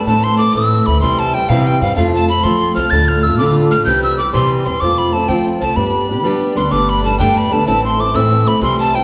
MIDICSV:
0, 0, Header, 1, 4, 480
1, 0, Start_track
1, 0, Tempo, 316623
1, 112, Time_signature, 6, 3, 24, 8
1, 13700, End_track
2, 0, Start_track
2, 0, Title_t, "Tin whistle"
2, 0, Program_c, 0, 75
2, 94, Note_on_c, 0, 81, 96
2, 356, Note_on_c, 0, 84, 93
2, 379, Note_off_c, 0, 81, 0
2, 568, Note_off_c, 0, 84, 0
2, 577, Note_on_c, 0, 86, 85
2, 806, Note_on_c, 0, 88, 93
2, 829, Note_off_c, 0, 86, 0
2, 1307, Note_on_c, 0, 83, 97
2, 1330, Note_off_c, 0, 88, 0
2, 1524, Note_off_c, 0, 83, 0
2, 1533, Note_on_c, 0, 84, 99
2, 1803, Note_on_c, 0, 81, 98
2, 1826, Note_off_c, 0, 84, 0
2, 2032, Note_on_c, 0, 79, 100
2, 2054, Note_off_c, 0, 81, 0
2, 2261, Note_on_c, 0, 77, 91
2, 2284, Note_off_c, 0, 79, 0
2, 2529, Note_on_c, 0, 79, 85
2, 2552, Note_off_c, 0, 77, 0
2, 2742, Note_off_c, 0, 79, 0
2, 2751, Note_on_c, 0, 77, 90
2, 2957, Note_off_c, 0, 77, 0
2, 2966, Note_on_c, 0, 77, 87
2, 3225, Note_off_c, 0, 77, 0
2, 3248, Note_on_c, 0, 81, 102
2, 3463, Note_off_c, 0, 81, 0
2, 3474, Note_on_c, 0, 83, 99
2, 3692, Note_on_c, 0, 84, 86
2, 3715, Note_off_c, 0, 83, 0
2, 4166, Note_off_c, 0, 84, 0
2, 4175, Note_on_c, 0, 89, 99
2, 4400, Note_on_c, 0, 93, 113
2, 4423, Note_off_c, 0, 89, 0
2, 4674, Note_on_c, 0, 89, 107
2, 4697, Note_off_c, 0, 93, 0
2, 4897, Note_on_c, 0, 88, 94
2, 4920, Note_off_c, 0, 89, 0
2, 5119, Note_off_c, 0, 88, 0
2, 5128, Note_on_c, 0, 86, 86
2, 5385, Note_off_c, 0, 86, 0
2, 5626, Note_on_c, 0, 89, 100
2, 5833, Note_off_c, 0, 89, 0
2, 5842, Note_on_c, 0, 91, 106
2, 6102, Note_off_c, 0, 91, 0
2, 6116, Note_on_c, 0, 88, 104
2, 6329, Note_off_c, 0, 88, 0
2, 6338, Note_on_c, 0, 86, 90
2, 6559, Note_off_c, 0, 86, 0
2, 6568, Note_on_c, 0, 84, 92
2, 6825, Note_off_c, 0, 84, 0
2, 7055, Note_on_c, 0, 84, 97
2, 7283, Note_on_c, 0, 86, 108
2, 7305, Note_off_c, 0, 84, 0
2, 7550, Note_on_c, 0, 83, 103
2, 7573, Note_off_c, 0, 86, 0
2, 7777, Note_on_c, 0, 81, 90
2, 7800, Note_off_c, 0, 83, 0
2, 8011, Note_on_c, 0, 79, 81
2, 8034, Note_off_c, 0, 81, 0
2, 8285, Note_off_c, 0, 79, 0
2, 8511, Note_on_c, 0, 81, 88
2, 8734, Note_on_c, 0, 83, 84
2, 8757, Note_off_c, 0, 81, 0
2, 9497, Note_off_c, 0, 83, 0
2, 9954, Note_on_c, 0, 84, 86
2, 10179, Note_on_c, 0, 86, 106
2, 10202, Note_off_c, 0, 84, 0
2, 10450, Note_on_c, 0, 83, 104
2, 10473, Note_off_c, 0, 86, 0
2, 10673, Note_off_c, 0, 83, 0
2, 10682, Note_on_c, 0, 81, 91
2, 10892, Note_off_c, 0, 81, 0
2, 10905, Note_on_c, 0, 79, 93
2, 11180, Note_on_c, 0, 83, 84
2, 11203, Note_off_c, 0, 79, 0
2, 11407, Note_on_c, 0, 81, 90
2, 11429, Note_off_c, 0, 83, 0
2, 11624, Note_off_c, 0, 81, 0
2, 11633, Note_on_c, 0, 81, 93
2, 11878, Note_off_c, 0, 81, 0
2, 11904, Note_on_c, 0, 84, 96
2, 12132, Note_on_c, 0, 86, 104
2, 12155, Note_off_c, 0, 84, 0
2, 12363, Note_on_c, 0, 88, 99
2, 12385, Note_off_c, 0, 86, 0
2, 12848, Note_on_c, 0, 83, 85
2, 12871, Note_off_c, 0, 88, 0
2, 13069, Note_off_c, 0, 83, 0
2, 13078, Note_on_c, 0, 84, 94
2, 13322, Note_off_c, 0, 84, 0
2, 13341, Note_on_c, 0, 81, 114
2, 13568, Note_on_c, 0, 79, 99
2, 13591, Note_off_c, 0, 81, 0
2, 13700, Note_off_c, 0, 79, 0
2, 13700, End_track
3, 0, Start_track
3, 0, Title_t, "Steel-string acoustic guitar"
3, 0, Program_c, 1, 25
3, 109, Note_on_c, 1, 45, 86
3, 119, Note_on_c, 1, 52, 77
3, 128, Note_on_c, 1, 57, 83
3, 136, Note_on_c, 1, 60, 79
3, 149, Note_on_c, 1, 64, 78
3, 575, Note_off_c, 1, 52, 0
3, 593, Note_on_c, 1, 52, 54
3, 602, Note_off_c, 1, 57, 0
3, 603, Note_off_c, 1, 45, 0
3, 620, Note_on_c, 1, 57, 51
3, 623, Note_off_c, 1, 64, 0
3, 632, Note_off_c, 1, 60, 0
3, 638, Note_on_c, 1, 60, 62
3, 647, Note_on_c, 1, 64, 63
3, 813, Note_off_c, 1, 52, 0
3, 819, Note_on_c, 1, 45, 84
3, 822, Note_off_c, 1, 57, 0
3, 830, Note_off_c, 1, 60, 0
3, 832, Note_on_c, 1, 52, 83
3, 836, Note_off_c, 1, 64, 0
3, 840, Note_on_c, 1, 57, 94
3, 848, Note_on_c, 1, 60, 87
3, 854, Note_on_c, 1, 64, 93
3, 1293, Note_off_c, 1, 52, 0
3, 1311, Note_on_c, 1, 52, 68
3, 1312, Note_off_c, 1, 57, 0
3, 1318, Note_off_c, 1, 45, 0
3, 1330, Note_on_c, 1, 57, 59
3, 1336, Note_off_c, 1, 64, 0
3, 1339, Note_off_c, 1, 60, 0
3, 1345, Note_on_c, 1, 60, 66
3, 1360, Note_on_c, 1, 64, 75
3, 1529, Note_off_c, 1, 52, 0
3, 1538, Note_on_c, 1, 48, 67
3, 1545, Note_off_c, 1, 60, 0
3, 1547, Note_on_c, 1, 52, 83
3, 1551, Note_off_c, 1, 64, 0
3, 1554, Note_off_c, 1, 57, 0
3, 1560, Note_on_c, 1, 55, 82
3, 1563, Note_on_c, 1, 60, 99
3, 1570, Note_on_c, 1, 64, 89
3, 2019, Note_off_c, 1, 52, 0
3, 2036, Note_off_c, 1, 55, 0
3, 2037, Note_on_c, 1, 52, 57
3, 2038, Note_off_c, 1, 48, 0
3, 2050, Note_off_c, 1, 60, 0
3, 2053, Note_off_c, 1, 64, 0
3, 2054, Note_on_c, 1, 55, 64
3, 2075, Note_on_c, 1, 60, 63
3, 2089, Note_on_c, 1, 64, 73
3, 2255, Note_off_c, 1, 52, 0
3, 2261, Note_on_c, 1, 48, 80
3, 2268, Note_off_c, 1, 55, 0
3, 2273, Note_on_c, 1, 52, 87
3, 2274, Note_off_c, 1, 60, 0
3, 2278, Note_off_c, 1, 64, 0
3, 2286, Note_on_c, 1, 55, 90
3, 2292, Note_on_c, 1, 60, 94
3, 2296, Note_on_c, 1, 64, 96
3, 2738, Note_off_c, 1, 52, 0
3, 2753, Note_off_c, 1, 55, 0
3, 2756, Note_on_c, 1, 52, 72
3, 2759, Note_off_c, 1, 48, 0
3, 2771, Note_on_c, 1, 55, 65
3, 2774, Note_off_c, 1, 60, 0
3, 2776, Note_off_c, 1, 64, 0
3, 2793, Note_on_c, 1, 60, 73
3, 2809, Note_on_c, 1, 64, 65
3, 2967, Note_off_c, 1, 52, 0
3, 2973, Note_on_c, 1, 53, 80
3, 2979, Note_off_c, 1, 60, 0
3, 2983, Note_off_c, 1, 55, 0
3, 2989, Note_on_c, 1, 57, 82
3, 2997, Note_on_c, 1, 60, 94
3, 3006, Note_off_c, 1, 64, 0
3, 3012, Note_on_c, 1, 65, 97
3, 3443, Note_off_c, 1, 53, 0
3, 3461, Note_on_c, 1, 53, 54
3, 3468, Note_off_c, 1, 57, 0
3, 3482, Note_off_c, 1, 60, 0
3, 3486, Note_on_c, 1, 57, 62
3, 3494, Note_off_c, 1, 65, 0
3, 3500, Note_on_c, 1, 60, 64
3, 3511, Note_on_c, 1, 65, 63
3, 3672, Note_off_c, 1, 53, 0
3, 3687, Note_off_c, 1, 57, 0
3, 3690, Note_on_c, 1, 53, 90
3, 3697, Note_off_c, 1, 60, 0
3, 3705, Note_off_c, 1, 65, 0
3, 3705, Note_on_c, 1, 57, 86
3, 3715, Note_on_c, 1, 60, 94
3, 3723, Note_on_c, 1, 65, 88
3, 4175, Note_off_c, 1, 53, 0
3, 4193, Note_on_c, 1, 53, 66
3, 4200, Note_off_c, 1, 57, 0
3, 4205, Note_off_c, 1, 60, 0
3, 4209, Note_off_c, 1, 65, 0
3, 4216, Note_on_c, 1, 57, 63
3, 4231, Note_on_c, 1, 60, 68
3, 4243, Note_on_c, 1, 65, 59
3, 4424, Note_off_c, 1, 53, 0
3, 4424, Note_on_c, 1, 38, 70
3, 4427, Note_off_c, 1, 57, 0
3, 4436, Note_on_c, 1, 45, 71
3, 4439, Note_off_c, 1, 65, 0
3, 4442, Note_on_c, 1, 50, 79
3, 4443, Note_off_c, 1, 60, 0
3, 4445, Note_on_c, 1, 57, 80
3, 4452, Note_on_c, 1, 62, 94
3, 4457, Note_on_c, 1, 65, 83
3, 4885, Note_off_c, 1, 50, 0
3, 4903, Note_on_c, 1, 50, 51
3, 4907, Note_off_c, 1, 57, 0
3, 4919, Note_off_c, 1, 38, 0
3, 4924, Note_off_c, 1, 62, 0
3, 4925, Note_off_c, 1, 45, 0
3, 4925, Note_on_c, 1, 57, 56
3, 4935, Note_off_c, 1, 65, 0
3, 4942, Note_on_c, 1, 62, 54
3, 4957, Note_on_c, 1, 65, 75
3, 5139, Note_off_c, 1, 50, 0
3, 5143, Note_on_c, 1, 38, 83
3, 5148, Note_off_c, 1, 62, 0
3, 5150, Note_off_c, 1, 57, 0
3, 5152, Note_on_c, 1, 45, 91
3, 5159, Note_off_c, 1, 65, 0
3, 5162, Note_on_c, 1, 50, 89
3, 5166, Note_on_c, 1, 62, 81
3, 5169, Note_on_c, 1, 57, 89
3, 5178, Note_on_c, 1, 65, 109
3, 5613, Note_off_c, 1, 50, 0
3, 5631, Note_on_c, 1, 50, 60
3, 5633, Note_off_c, 1, 57, 0
3, 5638, Note_off_c, 1, 38, 0
3, 5643, Note_off_c, 1, 45, 0
3, 5650, Note_off_c, 1, 62, 0
3, 5651, Note_on_c, 1, 57, 64
3, 5656, Note_off_c, 1, 65, 0
3, 5675, Note_on_c, 1, 62, 70
3, 5685, Note_on_c, 1, 65, 71
3, 5850, Note_on_c, 1, 48, 78
3, 5858, Note_off_c, 1, 50, 0
3, 5863, Note_off_c, 1, 57, 0
3, 5864, Note_on_c, 1, 52, 76
3, 5869, Note_on_c, 1, 55, 80
3, 5871, Note_off_c, 1, 62, 0
3, 5878, Note_on_c, 1, 60, 97
3, 5881, Note_off_c, 1, 65, 0
3, 5887, Note_on_c, 1, 67, 85
3, 6321, Note_off_c, 1, 52, 0
3, 6339, Note_on_c, 1, 52, 58
3, 6343, Note_off_c, 1, 55, 0
3, 6351, Note_off_c, 1, 48, 0
3, 6357, Note_off_c, 1, 60, 0
3, 6361, Note_on_c, 1, 55, 58
3, 6370, Note_off_c, 1, 67, 0
3, 6376, Note_on_c, 1, 60, 59
3, 6394, Note_on_c, 1, 67, 57
3, 6562, Note_off_c, 1, 52, 0
3, 6569, Note_on_c, 1, 48, 97
3, 6574, Note_off_c, 1, 55, 0
3, 6580, Note_on_c, 1, 52, 93
3, 6582, Note_off_c, 1, 60, 0
3, 6586, Note_off_c, 1, 67, 0
3, 6592, Note_on_c, 1, 55, 97
3, 6600, Note_on_c, 1, 60, 93
3, 6604, Note_on_c, 1, 67, 96
3, 7053, Note_off_c, 1, 52, 0
3, 7071, Note_off_c, 1, 48, 0
3, 7071, Note_off_c, 1, 55, 0
3, 7072, Note_on_c, 1, 52, 62
3, 7087, Note_off_c, 1, 60, 0
3, 7089, Note_off_c, 1, 67, 0
3, 7089, Note_on_c, 1, 55, 69
3, 7103, Note_on_c, 1, 60, 66
3, 7122, Note_on_c, 1, 67, 71
3, 7290, Note_off_c, 1, 52, 0
3, 7296, Note_on_c, 1, 53, 79
3, 7298, Note_off_c, 1, 60, 0
3, 7310, Note_off_c, 1, 55, 0
3, 7317, Note_on_c, 1, 60, 74
3, 7320, Note_on_c, 1, 57, 82
3, 7326, Note_off_c, 1, 67, 0
3, 7332, Note_on_c, 1, 65, 88
3, 7769, Note_off_c, 1, 53, 0
3, 7788, Note_off_c, 1, 60, 0
3, 7788, Note_on_c, 1, 53, 66
3, 7806, Note_off_c, 1, 57, 0
3, 7806, Note_on_c, 1, 60, 65
3, 7813, Note_off_c, 1, 65, 0
3, 7826, Note_on_c, 1, 57, 64
3, 7843, Note_on_c, 1, 65, 73
3, 7987, Note_off_c, 1, 53, 0
3, 8005, Note_off_c, 1, 60, 0
3, 8005, Note_on_c, 1, 53, 84
3, 8018, Note_off_c, 1, 57, 0
3, 8023, Note_on_c, 1, 60, 93
3, 8029, Note_off_c, 1, 65, 0
3, 8036, Note_on_c, 1, 57, 93
3, 8048, Note_on_c, 1, 65, 93
3, 8483, Note_off_c, 1, 53, 0
3, 8501, Note_on_c, 1, 53, 69
3, 8502, Note_off_c, 1, 60, 0
3, 8521, Note_off_c, 1, 57, 0
3, 8521, Note_on_c, 1, 60, 60
3, 8530, Note_off_c, 1, 65, 0
3, 8539, Note_on_c, 1, 57, 77
3, 8549, Note_on_c, 1, 65, 74
3, 8728, Note_off_c, 1, 53, 0
3, 8734, Note_on_c, 1, 55, 82
3, 8738, Note_off_c, 1, 60, 0
3, 8744, Note_on_c, 1, 59, 78
3, 8756, Note_off_c, 1, 57, 0
3, 8761, Note_off_c, 1, 65, 0
3, 8762, Note_on_c, 1, 62, 78
3, 8772, Note_on_c, 1, 67, 75
3, 9206, Note_off_c, 1, 55, 0
3, 9224, Note_off_c, 1, 59, 0
3, 9224, Note_on_c, 1, 55, 48
3, 9239, Note_off_c, 1, 62, 0
3, 9243, Note_on_c, 1, 59, 58
3, 9253, Note_off_c, 1, 67, 0
3, 9257, Note_on_c, 1, 62, 67
3, 9274, Note_on_c, 1, 67, 69
3, 9433, Note_off_c, 1, 55, 0
3, 9450, Note_off_c, 1, 59, 0
3, 9451, Note_on_c, 1, 55, 87
3, 9455, Note_off_c, 1, 62, 0
3, 9468, Note_on_c, 1, 59, 107
3, 9473, Note_on_c, 1, 62, 118
3, 9474, Note_off_c, 1, 67, 0
3, 9492, Note_on_c, 1, 67, 113
3, 9920, Note_off_c, 1, 55, 0
3, 9938, Note_on_c, 1, 55, 72
3, 9943, Note_off_c, 1, 59, 0
3, 9956, Note_off_c, 1, 62, 0
3, 9961, Note_on_c, 1, 59, 74
3, 9973, Note_off_c, 1, 67, 0
3, 9974, Note_on_c, 1, 62, 71
3, 9991, Note_on_c, 1, 67, 80
3, 10160, Note_off_c, 1, 55, 0
3, 10166, Note_on_c, 1, 43, 79
3, 10171, Note_off_c, 1, 59, 0
3, 10174, Note_on_c, 1, 50, 75
3, 10178, Note_on_c, 1, 55, 80
3, 10182, Note_off_c, 1, 62, 0
3, 10189, Note_on_c, 1, 57, 85
3, 10189, Note_on_c, 1, 59, 79
3, 10194, Note_off_c, 1, 67, 0
3, 10200, Note_on_c, 1, 62, 87
3, 10654, Note_off_c, 1, 55, 0
3, 10670, Note_off_c, 1, 43, 0
3, 10672, Note_on_c, 1, 55, 65
3, 10674, Note_off_c, 1, 50, 0
3, 10675, Note_off_c, 1, 59, 0
3, 10682, Note_off_c, 1, 57, 0
3, 10687, Note_off_c, 1, 62, 0
3, 10693, Note_on_c, 1, 59, 55
3, 10707, Note_on_c, 1, 57, 56
3, 10721, Note_on_c, 1, 62, 57
3, 10890, Note_on_c, 1, 43, 90
3, 10892, Note_off_c, 1, 55, 0
3, 10893, Note_off_c, 1, 59, 0
3, 10902, Note_on_c, 1, 50, 90
3, 10907, Note_off_c, 1, 57, 0
3, 10910, Note_off_c, 1, 62, 0
3, 10911, Note_on_c, 1, 55, 92
3, 10911, Note_on_c, 1, 59, 85
3, 10925, Note_on_c, 1, 57, 92
3, 10928, Note_on_c, 1, 62, 107
3, 11358, Note_off_c, 1, 55, 0
3, 11376, Note_on_c, 1, 55, 65
3, 11379, Note_off_c, 1, 59, 0
3, 11392, Note_off_c, 1, 43, 0
3, 11396, Note_off_c, 1, 57, 0
3, 11397, Note_on_c, 1, 59, 69
3, 11398, Note_off_c, 1, 50, 0
3, 11411, Note_off_c, 1, 62, 0
3, 11414, Note_on_c, 1, 57, 71
3, 11427, Note_on_c, 1, 62, 72
3, 11604, Note_on_c, 1, 45, 68
3, 11609, Note_off_c, 1, 57, 0
3, 11610, Note_off_c, 1, 55, 0
3, 11616, Note_on_c, 1, 52, 84
3, 11621, Note_off_c, 1, 59, 0
3, 11627, Note_on_c, 1, 57, 89
3, 11633, Note_off_c, 1, 62, 0
3, 11635, Note_on_c, 1, 60, 95
3, 11639, Note_on_c, 1, 64, 100
3, 12084, Note_off_c, 1, 52, 0
3, 12102, Note_on_c, 1, 52, 57
3, 12106, Note_off_c, 1, 57, 0
3, 12109, Note_off_c, 1, 45, 0
3, 12124, Note_on_c, 1, 57, 70
3, 12127, Note_off_c, 1, 64, 0
3, 12135, Note_off_c, 1, 60, 0
3, 12141, Note_on_c, 1, 60, 60
3, 12158, Note_on_c, 1, 64, 64
3, 12329, Note_off_c, 1, 52, 0
3, 12335, Note_off_c, 1, 57, 0
3, 12336, Note_on_c, 1, 45, 103
3, 12343, Note_off_c, 1, 60, 0
3, 12347, Note_on_c, 1, 52, 90
3, 12353, Note_off_c, 1, 64, 0
3, 12353, Note_on_c, 1, 57, 83
3, 12361, Note_on_c, 1, 60, 109
3, 12371, Note_on_c, 1, 64, 89
3, 12807, Note_off_c, 1, 52, 0
3, 12825, Note_on_c, 1, 52, 68
3, 12829, Note_off_c, 1, 57, 0
3, 12836, Note_off_c, 1, 45, 0
3, 12847, Note_on_c, 1, 57, 74
3, 12854, Note_off_c, 1, 64, 0
3, 12856, Note_off_c, 1, 60, 0
3, 12862, Note_on_c, 1, 60, 69
3, 12880, Note_on_c, 1, 64, 73
3, 13055, Note_off_c, 1, 52, 0
3, 13060, Note_on_c, 1, 48, 84
3, 13072, Note_off_c, 1, 57, 0
3, 13073, Note_off_c, 1, 60, 0
3, 13073, Note_on_c, 1, 52, 86
3, 13080, Note_off_c, 1, 64, 0
3, 13082, Note_on_c, 1, 55, 80
3, 13091, Note_on_c, 1, 60, 75
3, 13098, Note_on_c, 1, 64, 91
3, 13536, Note_off_c, 1, 52, 0
3, 13553, Note_off_c, 1, 55, 0
3, 13554, Note_on_c, 1, 52, 61
3, 13559, Note_off_c, 1, 48, 0
3, 13571, Note_on_c, 1, 55, 68
3, 13574, Note_off_c, 1, 60, 0
3, 13578, Note_off_c, 1, 64, 0
3, 13592, Note_on_c, 1, 60, 66
3, 13604, Note_on_c, 1, 64, 54
3, 13700, Note_off_c, 1, 52, 0
3, 13700, Note_off_c, 1, 55, 0
3, 13700, Note_off_c, 1, 60, 0
3, 13700, Note_off_c, 1, 64, 0
3, 13700, End_track
4, 0, Start_track
4, 0, Title_t, "Upright bass"
4, 0, Program_c, 2, 32
4, 104, Note_on_c, 2, 45, 83
4, 703, Note_off_c, 2, 45, 0
4, 827, Note_on_c, 2, 45, 99
4, 1237, Note_off_c, 2, 45, 0
4, 1325, Note_on_c, 2, 38, 91
4, 1513, Note_off_c, 2, 38, 0
4, 1546, Note_on_c, 2, 36, 88
4, 2265, Note_on_c, 2, 48, 111
4, 2288, Note_off_c, 2, 36, 0
4, 2675, Note_off_c, 2, 48, 0
4, 2755, Note_on_c, 2, 43, 92
4, 2946, Note_off_c, 2, 43, 0
4, 2990, Note_on_c, 2, 41, 93
4, 3713, Note_on_c, 2, 53, 92
4, 3736, Note_off_c, 2, 41, 0
4, 4120, Note_off_c, 2, 53, 0
4, 4194, Note_on_c, 2, 36, 84
4, 4385, Note_off_c, 2, 36, 0
4, 4421, Note_on_c, 2, 38, 99
4, 5143, Note_off_c, 2, 38, 0
4, 5143, Note_on_c, 2, 50, 90
4, 5553, Note_off_c, 2, 50, 0
4, 5636, Note_on_c, 2, 33, 91
4, 5826, Note_off_c, 2, 33, 0
4, 5856, Note_on_c, 2, 36, 90
4, 6581, Note_on_c, 2, 48, 97
4, 6604, Note_off_c, 2, 36, 0
4, 6992, Note_off_c, 2, 48, 0
4, 7071, Note_on_c, 2, 40, 94
4, 7263, Note_off_c, 2, 40, 0
4, 7302, Note_on_c, 2, 41, 87
4, 8020, Note_on_c, 2, 53, 98
4, 8043, Note_off_c, 2, 41, 0
4, 8431, Note_off_c, 2, 53, 0
4, 8512, Note_on_c, 2, 36, 85
4, 8703, Note_off_c, 2, 36, 0
4, 8743, Note_on_c, 2, 43, 83
4, 9455, Note_off_c, 2, 43, 0
4, 9455, Note_on_c, 2, 55, 93
4, 9868, Note_off_c, 2, 55, 0
4, 9951, Note_on_c, 2, 38, 92
4, 10142, Note_off_c, 2, 38, 0
4, 10182, Note_on_c, 2, 31, 86
4, 10903, Note_on_c, 2, 43, 98
4, 10925, Note_off_c, 2, 31, 0
4, 11313, Note_off_c, 2, 43, 0
4, 11403, Note_on_c, 2, 38, 87
4, 11590, Note_off_c, 2, 38, 0
4, 11636, Note_on_c, 2, 33, 99
4, 12347, Note_on_c, 2, 45, 110
4, 12370, Note_off_c, 2, 33, 0
4, 12757, Note_off_c, 2, 45, 0
4, 12836, Note_on_c, 2, 35, 85
4, 13027, Note_off_c, 2, 35, 0
4, 13059, Note_on_c, 2, 36, 102
4, 13700, Note_off_c, 2, 36, 0
4, 13700, End_track
0, 0, End_of_file